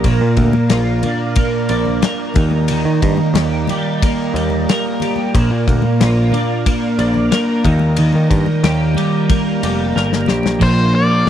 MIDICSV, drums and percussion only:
0, 0, Header, 1, 2, 480
1, 0, Start_track
1, 0, Key_signature, -2, "major"
1, 0, Tempo, 659341
1, 33, Time_signature, 4, 2, 24, 8
1, 8223, End_track
2, 0, Start_track
2, 0, Title_t, "Drums"
2, 30, Note_on_c, 9, 51, 83
2, 31, Note_on_c, 9, 36, 101
2, 103, Note_off_c, 9, 36, 0
2, 103, Note_off_c, 9, 51, 0
2, 267, Note_on_c, 9, 51, 63
2, 271, Note_on_c, 9, 36, 73
2, 339, Note_off_c, 9, 51, 0
2, 344, Note_off_c, 9, 36, 0
2, 388, Note_on_c, 9, 63, 74
2, 461, Note_off_c, 9, 63, 0
2, 507, Note_on_c, 9, 51, 89
2, 510, Note_on_c, 9, 38, 95
2, 580, Note_off_c, 9, 51, 0
2, 582, Note_off_c, 9, 38, 0
2, 748, Note_on_c, 9, 63, 61
2, 748, Note_on_c, 9, 64, 74
2, 749, Note_on_c, 9, 51, 58
2, 821, Note_off_c, 9, 63, 0
2, 821, Note_off_c, 9, 64, 0
2, 822, Note_off_c, 9, 51, 0
2, 987, Note_on_c, 9, 51, 90
2, 993, Note_on_c, 9, 36, 103
2, 1060, Note_off_c, 9, 51, 0
2, 1066, Note_off_c, 9, 36, 0
2, 1229, Note_on_c, 9, 51, 67
2, 1302, Note_off_c, 9, 51, 0
2, 1348, Note_on_c, 9, 64, 60
2, 1421, Note_off_c, 9, 64, 0
2, 1473, Note_on_c, 9, 51, 77
2, 1476, Note_on_c, 9, 38, 105
2, 1546, Note_off_c, 9, 51, 0
2, 1549, Note_off_c, 9, 38, 0
2, 1704, Note_on_c, 9, 64, 79
2, 1715, Note_on_c, 9, 51, 73
2, 1718, Note_on_c, 9, 36, 108
2, 1777, Note_off_c, 9, 64, 0
2, 1788, Note_off_c, 9, 51, 0
2, 1791, Note_off_c, 9, 36, 0
2, 1826, Note_on_c, 9, 63, 74
2, 1899, Note_off_c, 9, 63, 0
2, 1951, Note_on_c, 9, 51, 93
2, 2024, Note_off_c, 9, 51, 0
2, 2201, Note_on_c, 9, 36, 78
2, 2201, Note_on_c, 9, 51, 69
2, 2274, Note_off_c, 9, 36, 0
2, 2274, Note_off_c, 9, 51, 0
2, 2309, Note_on_c, 9, 63, 75
2, 2382, Note_off_c, 9, 63, 0
2, 2440, Note_on_c, 9, 51, 91
2, 2443, Note_on_c, 9, 38, 100
2, 2513, Note_off_c, 9, 51, 0
2, 2516, Note_off_c, 9, 38, 0
2, 2675, Note_on_c, 9, 63, 75
2, 2675, Note_on_c, 9, 64, 63
2, 2687, Note_on_c, 9, 51, 66
2, 2747, Note_off_c, 9, 63, 0
2, 2747, Note_off_c, 9, 64, 0
2, 2760, Note_off_c, 9, 51, 0
2, 2930, Note_on_c, 9, 36, 111
2, 2931, Note_on_c, 9, 51, 97
2, 3003, Note_off_c, 9, 36, 0
2, 3004, Note_off_c, 9, 51, 0
2, 3174, Note_on_c, 9, 51, 69
2, 3247, Note_off_c, 9, 51, 0
2, 3275, Note_on_c, 9, 64, 65
2, 3348, Note_off_c, 9, 64, 0
2, 3416, Note_on_c, 9, 51, 86
2, 3419, Note_on_c, 9, 38, 91
2, 3489, Note_off_c, 9, 51, 0
2, 3492, Note_off_c, 9, 38, 0
2, 3640, Note_on_c, 9, 64, 68
2, 3654, Note_on_c, 9, 51, 67
2, 3713, Note_off_c, 9, 64, 0
2, 3727, Note_off_c, 9, 51, 0
2, 3756, Note_on_c, 9, 63, 58
2, 3829, Note_off_c, 9, 63, 0
2, 3892, Note_on_c, 9, 36, 101
2, 3894, Note_on_c, 9, 51, 88
2, 3965, Note_off_c, 9, 36, 0
2, 3967, Note_off_c, 9, 51, 0
2, 4133, Note_on_c, 9, 36, 90
2, 4140, Note_on_c, 9, 51, 65
2, 4205, Note_off_c, 9, 36, 0
2, 4213, Note_off_c, 9, 51, 0
2, 4237, Note_on_c, 9, 63, 76
2, 4310, Note_off_c, 9, 63, 0
2, 4373, Note_on_c, 9, 51, 87
2, 4376, Note_on_c, 9, 38, 99
2, 4446, Note_off_c, 9, 51, 0
2, 4449, Note_off_c, 9, 38, 0
2, 4598, Note_on_c, 9, 63, 66
2, 4598, Note_on_c, 9, 64, 61
2, 4614, Note_on_c, 9, 51, 58
2, 4671, Note_off_c, 9, 63, 0
2, 4671, Note_off_c, 9, 64, 0
2, 4687, Note_off_c, 9, 51, 0
2, 4851, Note_on_c, 9, 36, 98
2, 4851, Note_on_c, 9, 51, 92
2, 4923, Note_off_c, 9, 36, 0
2, 4924, Note_off_c, 9, 51, 0
2, 5087, Note_on_c, 9, 51, 65
2, 5160, Note_off_c, 9, 51, 0
2, 5200, Note_on_c, 9, 64, 65
2, 5273, Note_off_c, 9, 64, 0
2, 5328, Note_on_c, 9, 51, 96
2, 5331, Note_on_c, 9, 38, 93
2, 5401, Note_off_c, 9, 51, 0
2, 5404, Note_off_c, 9, 38, 0
2, 5563, Note_on_c, 9, 64, 73
2, 5566, Note_on_c, 9, 36, 88
2, 5570, Note_on_c, 9, 51, 68
2, 5636, Note_off_c, 9, 64, 0
2, 5639, Note_off_c, 9, 36, 0
2, 5643, Note_off_c, 9, 51, 0
2, 5673, Note_on_c, 9, 63, 73
2, 5745, Note_off_c, 9, 63, 0
2, 5799, Note_on_c, 9, 51, 96
2, 5871, Note_off_c, 9, 51, 0
2, 5916, Note_on_c, 9, 63, 68
2, 5989, Note_off_c, 9, 63, 0
2, 6047, Note_on_c, 9, 36, 88
2, 6049, Note_on_c, 9, 51, 68
2, 6120, Note_off_c, 9, 36, 0
2, 6122, Note_off_c, 9, 51, 0
2, 6159, Note_on_c, 9, 63, 71
2, 6232, Note_off_c, 9, 63, 0
2, 6288, Note_on_c, 9, 51, 84
2, 6291, Note_on_c, 9, 38, 94
2, 6361, Note_off_c, 9, 51, 0
2, 6364, Note_off_c, 9, 38, 0
2, 6513, Note_on_c, 9, 63, 70
2, 6513, Note_on_c, 9, 64, 63
2, 6534, Note_on_c, 9, 51, 68
2, 6585, Note_off_c, 9, 63, 0
2, 6585, Note_off_c, 9, 64, 0
2, 6607, Note_off_c, 9, 51, 0
2, 6768, Note_on_c, 9, 36, 117
2, 6768, Note_on_c, 9, 51, 89
2, 6841, Note_off_c, 9, 36, 0
2, 6841, Note_off_c, 9, 51, 0
2, 7012, Note_on_c, 9, 51, 79
2, 7085, Note_off_c, 9, 51, 0
2, 7256, Note_on_c, 9, 38, 59
2, 7329, Note_off_c, 9, 38, 0
2, 7373, Note_on_c, 9, 38, 62
2, 7446, Note_off_c, 9, 38, 0
2, 7470, Note_on_c, 9, 64, 75
2, 7487, Note_on_c, 9, 38, 81
2, 7543, Note_off_c, 9, 64, 0
2, 7560, Note_off_c, 9, 38, 0
2, 7594, Note_on_c, 9, 63, 70
2, 7613, Note_on_c, 9, 38, 92
2, 7667, Note_off_c, 9, 63, 0
2, 7686, Note_off_c, 9, 38, 0
2, 7726, Note_on_c, 9, 36, 95
2, 7728, Note_on_c, 9, 49, 84
2, 7798, Note_off_c, 9, 36, 0
2, 7801, Note_off_c, 9, 49, 0
2, 8223, End_track
0, 0, End_of_file